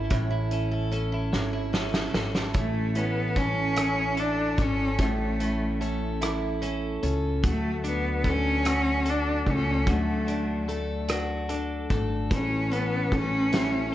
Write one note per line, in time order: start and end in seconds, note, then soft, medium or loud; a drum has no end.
0.00 0.11 C#4 medium
0.00 0.51 C#4 soft
0.00 0.30 E4 medium
0.00 0.32 E4 medium
0.00 0.53 A4 medium
0.00 0.71 A4 medium
0.10 1.29 A1 medium
0.10 1.33 A2 medium
0.10 1.32 C#4 medium
0.10 kick medium
0.10 closed hi-hat medium
0.30 1.12 E4 medium
0.30 0.73 E4 soft
0.51 0.91 C#4 soft
0.51 0.93 A4 medium
0.51 closed hi-hat soft
0.71 1.13 E4 soft
0.71 1.94 A4 medium
0.91 1.73 C#4 soft
0.91 1.73 A4 medium
0.91 closed hi-hat soft
1.12 1.53 E4 soft
1.12 1.53 E4 medium
1.33 2.11 G#1 medium
1.33 2.54 C#4 medium
1.33 snare soft
1.53 2.34 E4 medium
1.53 1.94 E4 medium
1.73 2.14 C#4 soft
1.73 2.14 A4 medium
1.73 snare medium
1.94 2.35 E4 soft
1.94 3.36 A4 soft
1.94 snare medium
2.14 2.52 G#1 medium
2.14 2.95 C#4 soft
2.14 4.17 A4 medium
2.14 snare medium
2.34 3.77 E4 soft
2.34 2.95 E4 soft
2.34 snare medium
2.54 4.54 A1 medium
2.54 2.99 A3 medium
2.54 3.36 C#4 medium
2.54 kick medium
2.54 closed hi-hat medium
2.95 3.40 B3 medium
2.95 4.18 C#4 soft
2.95 3.76 E4 soft
2.95 closed hi-hat soft
3.36 4.58 C#4 medium
3.36 4.20 C#4 medium
3.36 4.58 A4 medium
3.36 kick medium
3.36 closed hi-hat soft
3.76 5.39 E4 medium
3.76 6.20 E4 soft
3.76 cross-stick medium
3.76 closed hi-hat medium
4.17 4.63 D4 medium
4.17 6.63 A4 medium
4.17 closed hi-hat soft
4.58 4.97 G#1 medium
4.58 4.99 C#4 medium
4.58 5.04 C#4 medium
4.58 5.80 A4 medium
4.58 kick medium
4.58 closed hi-hat soft
4.99 6.98 A1 medium
4.99 7.43 A2 medium
4.99 5.92 A3 medium
4.99 5.80 C#4 medium
4.99 kick medium
4.99 closed hi-hat medium
5.40 6.60 C#4 soft
5.40 6.21 E4 soft
5.40 closed hi-hat soft
5.81 7.02 C#4 medium
5.81 7.02 A4 medium
5.81 closed hi-hat soft
6.21 7.51 E4 soft
6.21 7.51 E4 medium
6.21 cross-stick medium
6.21 closed hi-hat medium
6.62 7.51 C#4 soft
6.62 9.05 A4 medium
6.62 closed hi-hat soft
7.03 7.41 C#2 medium
7.03 7.51 C#4 medium
7.03 8.24 A4 medium
7.03 closed hi-hat soft
7.43 9.43 D2 loud
7.43 9.86 F#3 medium
7.43 7.83 A3 medium
7.43 kick medium
7.43 closed hi-hat medium
7.84 9.06 D4 soft
7.84 8.65 D4 soft
7.84 closed hi-hat soft
7.89 8.31 B3 medium
8.24 9.46 A3 medium
8.24 9.46 A4 medium
8.24 kick medium
8.24 closed hi-hat soft
8.30 9.11 C#4 medium
8.65 11.09 F#4 medium
8.65 cross-stick medium
8.65 closed hi-hat medium
9.06 11.49 A4 medium
9.06 closed hi-hat medium
9.10 9.51 D4 medium
9.46 9.84 C#2 medium
9.46 10.68 A3 medium
9.46 9.91 C#4 medium
9.46 10.68 A4 medium
9.46 kick medium
9.46 closed hi-hat soft
9.87 11.86 D2 medium
9.87 12.31 D3 medium
9.87 12.30 F#3 medium
9.87 10.79 A3 medium
9.87 kick medium
9.87 closed hi-hat medium
10.27 11.08 D4 soft
10.27 11.49 D4 medium
10.27 closed hi-hat soft
10.68 11.90 A3 soft
10.68 11.90 A4 medium
10.68 closed hi-hat soft
11.08 12.39 D4 medium
11.08 12.39 F#4 soft
11.08 cross-stick medium
11.08 closed hi-hat medium
11.49 12.39 D4 soft
11.49 13.92 A4 medium
11.49 closed hi-hat medium
11.90 12.28 G#1 medium
11.90 13.11 A3 medium
11.90 13.12 A4 soft
11.90 kick medium
11.90 closed hi-hat soft
12.31 13.95 A1 medium
12.31 13.95 E3 medium
12.31 12.74 C#4 medium
12.31 kick medium
12.31 closed hi-hat medium
12.71 13.14 B3 medium
12.71 13.52 C#4 soft
12.71 13.93 C#4 soft
12.71 closed hi-hat soft
13.11 13.95 A3 soft
13.11 13.95 C#4 medium
13.11 13.95 A4 medium
13.11 kick medium
13.11 closed hi-hat soft
13.52 13.95 E4 soft
13.52 snare medium
13.52 closed hi-hat medium